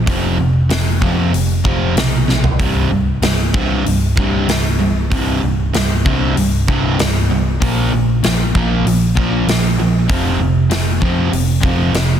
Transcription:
0.07 0.37 F1 medium
0.07 0.37 F2 medium
0.07 0.37 C3 medium
0.07 0.38 F3 loud
0.07 kick loud
0.07 open hi-hat soft
0.38 0.69 F1 medium
0.38 0.67 F2 medium
0.38 0.68 C3 medium
0.70 1.00 F1 medium
0.70 0.99 F2 medium
0.70 0.99 C3 medium
0.70 snare loud
0.70 open hi-hat medium
1.01 1.31 F2 medium
1.01 1.32 F2 medium
1.01 1.32 C3 medium
1.01 1.32 F3 medium
1.01 kick medium
1.32 1.63 F1 medium
1.32 1.62 F2 medium
1.32 1.61 C3 medium
1.32 open hi-hat soft
1.64 1.95 F1 medium
1.64 1.94 F2 medium
1.64 1.95 C3 medium
1.64 1.95 F3 medium
1.64 kick medium
1.95 2.56 B1 medium
1.95 2.25 F2 medium
1.95 2.26 C3 medium
1.95 snare loud
1.95 open hi-hat medium
2.27 2.56 F2 medium
2.27 2.56 C3 medium
2.27 snare medium
2.44 floor tom medium
2.59 2.89 C1 medium
2.59 2.89 C2 medium
2.59 2.90 G2 medium
2.59 2.90 C3 loud
2.59 kick medium
2.59 open hi-hat soft
2.91 3.21 C1 medium
2.91 3.19 C2 medium
2.91 3.19 G2 medium
3.22 3.52 C1 medium
3.22 3.51 C2 medium
3.22 3.51 G2 medium
3.22 snare loud
3.22 open hi-hat soft
3.54 3.83 C2 medium
3.54 3.84 C2 medium
3.54 3.84 G2 medium
3.54 3.84 C3 medium
3.54 kick medium
3.85 4.15 C1 medium
3.85 4.14 C2 medium
3.85 4.14 G2 medium
3.85 open hi-hat soft
4.17 4.47 C1 medium
4.17 4.47 C2 medium
4.17 4.47 G2 medium
4.17 4.48 C3 medium
4.17 kick medium
4.48 5.08 C1 medium
4.48 4.77 C2 medium
4.48 4.77 G2 medium
4.48 snare loud
4.48 open hi-hat medium
4.81 5.09 C2 medium
4.81 5.09 G2 medium
5.11 5.41 C1 medium
5.11 5.41 C2 medium
5.11 5.41 G2 medium
5.11 5.41 C3 medium
5.11 kick loud
5.11 open hi-hat soft
5.42 5.72 C1 medium
5.42 5.71 C2 medium
5.42 5.71 G2 medium
5.74 6.03 C1 medium
5.74 6.02 C2 medium
5.74 6.02 G2 medium
5.74 snare medium
5.74 open hi-hat medium
6.05 6.35 C2 medium
6.05 6.35 G2 medium
6.05 6.35 C3 medium
6.05 kick medium
6.36 6.66 C1 medium
6.36 6.65 C2 medium
6.36 6.65 G2 medium
6.36 open hi-hat soft
6.68 6.98 C1 medium
6.68 6.97 C2 medium
6.68 6.98 G2 medium
6.68 6.98 C3 medium
6.68 kick medium
6.99 7.58 C1 medium
6.99 7.27 C2 medium
6.99 7.27 G2 medium
6.99 snare loud
6.99 open hi-hat medium
7.29 7.58 C2 medium
7.29 7.58 G2 medium
7.60 7.91 A#1 medium
7.60 7.90 A#2 medium
7.60 7.91 F3 loud
7.60 7.91 A#3 medium
7.60 kick medium
7.60 open hi-hat soft
7.92 8.22 A#1 medium
7.92 8.20 A#2 medium
7.92 8.21 F3 medium
8.23 8.53 A#1 medium
8.23 8.51 A#2 medium
8.23 8.51 F3 medium
8.23 snare loud
8.23 open hi-hat soft
8.55 8.84 A#1 medium
8.55 8.84 A#2 medium
8.55 8.84 F3 medium
8.55 8.85 A#3 medium
8.55 kick medium
8.85 9.15 A#1 medium
8.85 9.13 A#2 medium
8.85 9.13 F3 medium
8.85 open hi-hat soft
9.15 9.46 A#1 medium
9.15 9.45 A#2 medium
9.15 9.45 F3 medium
9.15 9.46 A#3 medium
9.15 kick medium
9.47 10.06 A#1 medium
9.47 9.75 A#2 medium
9.47 9.75 F3 medium
9.47 snare loud
9.47 open hi-hat soft
9.79 10.06 A#2 medium
9.79 10.06 F3 medium
10.08 10.38 F2 medium
10.08 10.38 C3 medium
10.08 10.38 F3 medium
10.08 kick medium
10.08 open hi-hat soft
10.38 10.68 F1 medium
10.38 10.67 F2 medium
10.38 10.68 C3 medium
10.69 10.99 F1 medium
10.69 10.98 F2 medium
10.69 10.98 C3 medium
10.69 snare loud
10.69 open hi-hat medium
11.00 11.29 F2 medium
11.00 11.30 F2 medium
11.00 11.30 C3 medium
11.00 11.31 F3 medium
11.00 kick medium
11.30 11.61 F1 medium
11.30 11.59 F2 medium
11.30 11.59 C3 medium
11.30 open hi-hat soft
11.61 11.92 F1 medium
11.61 11.90 F2 medium
11.61 11.91 C3 medium
11.61 11.92 F3 medium
11.61 kick medium
11.92 12.20 F1 medium
11.92 12.20 F2 medium
11.92 12.20 C3 medium
11.92 snare loud
11.92 open hi-hat medium

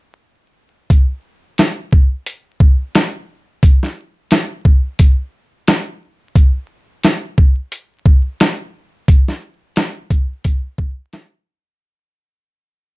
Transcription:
0.90 kick loud
0.90 closed hi-hat medium
1.58 snare loud
1.58 closed hi-hat medium
1.92 kick medium
2.26 closed hi-hat loud
2.60 kick loud
2.95 snare loud
2.95 closed hi-hat medium
3.63 kick loud
3.63 closed hi-hat medium
3.83 snare soft
4.31 snare loud
4.31 closed hi-hat medium
4.65 kick medium
4.99 kick loud
4.99 closed hi-hat loud
5.68 snare loud
5.68 closed hi-hat medium
6.36 kick loud
6.36 closed hi-hat medium
7.04 snare loud
7.04 closed hi-hat medium
7.38 kick medium
7.72 closed hi-hat loud
8.06 kick loud
8.40 snare loud
8.40 closed hi-hat medium
9.08 kick loud
9.08 closed hi-hat medium
9.28 snare soft
9.76 snare loud
9.76 closed hi-hat medium
10.11 kick medium
10.11 closed hi-hat medium
10.44 kick medium
10.44 closed hi-hat loud
10.78 kick medium
11.13 snare loud
11.13 closed hi-hat medium

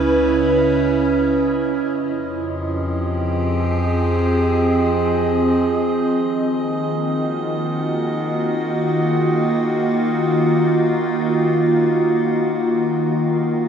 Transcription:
0.00 1.82 C#2 medium
0.00 1.86 C#3 medium
0.00 1.86 C#4 medium
0.00 1.86 E4 medium
0.00 1.87 B4 medium
0.00 13.68 D#5 medium
1.87 6.10 F2 medium
1.87 6.16 F3 medium
2.36 6.16 G4 medium
2.66 8.29 C4 medium
2.66 9.59 G#4 medium
6.15 13.68 D#3 medium
6.44 13.68 A#3 medium
6.62 13.68 F4 medium
6.91 13.68 F#4 medium

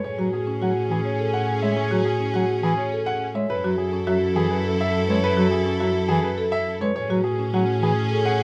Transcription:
0.04 3.35 A2 medium
0.04 3.32 C#4 medium
0.04 3.31 G#4 medium
0.04 3.32 G#4 medium
0.04 0.22 C#5 medium
0.19 0.29 F#3 medium
0.19 0.37 F#4 medium
0.33 0.51 G#4 medium
0.47 0.66 C#4 medium
0.61 0.72 F#3 medium
0.61 0.80 F#4 medium
0.61 0.80 F#5 medium
0.90 1.01 E3 medium
0.90 1.09 G#4 medium
1.05 1.23 C#5 medium
1.19 1.38 A4 medium
1.33 1.52 F#5 medium
1.62 1.73 G#3 medium
1.62 1.81 C#5 medium
1.62 1.81 E5 medium
1.77 1.95 C#5 medium
1.91 2.02 F#3 medium
1.91 2.10 F#4 medium
2.05 2.24 G#4 medium
2.20 2.39 C#4 medium
2.34 2.45 F#3 medium
2.34 2.53 F#4 medium
2.34 2.53 F#5 medium
2.63 2.74 E3 medium
2.63 2.82 G#4 medium
2.77 2.96 C#5 medium
2.92 3.11 A4 medium
3.06 3.25 F#5 medium
3.35 3.46 G#3 medium
3.35 3.54 C#5 medium
3.35 3.54 E5 medium
3.50 6.80 F#2 medium
3.50 6.77 E4 medium
3.50 6.78 A4 medium
3.50 3.68 B4 medium
3.64 3.75 F#3 medium
3.64 3.83 F#4 medium
3.78 3.97 G#4 medium
3.93 4.12 C#4 medium
4.07 4.18 F#3 medium
4.07 4.26 F#4 medium
4.07 4.26 E5 medium
4.36 4.47 E3 medium
4.36 4.55 G#4 medium
4.51 4.69 B4 medium
4.65 4.84 A4 medium
4.81 4.99 E5 medium
5.08 5.19 G#3 medium
5.08 5.27 B4 medium
5.08 5.28 C#5 medium
5.24 5.42 B4 loud
5.37 5.48 F#3 medium
5.37 5.56 F#4 medium
5.51 5.70 G#4 medium
5.66 5.85 C#4 medium
5.80 5.92 F#3 medium
5.80 5.99 F#4 medium
5.80 5.99 E5 medium
6.09 6.20 E3 medium
6.09 6.28 G#4 medium
6.24 6.42 B4 medium
6.38 6.57 A4 medium
6.52 6.71 E5 medium
6.81 6.92 G#3 medium
6.81 7.00 B4 medium
6.81 6.94 C#5 medium
6.96 8.43 A2 medium
6.96 8.43 C#4 medium
6.96 8.43 G#4 medium
6.96 7.14 C#5 medium
7.10 7.21 F#3 medium
7.10 7.29 F#4 medium
7.24 7.43 G#4 medium
7.39 7.58 C#4 medium
7.54 7.64 F#3 medium
7.54 7.72 F#4 medium
7.54 7.72 F#5 medium
7.82 7.93 E3 medium
7.82 8.01 G#4 medium
8.11 8.30 A4 medium
8.25 8.43 F#5 medium

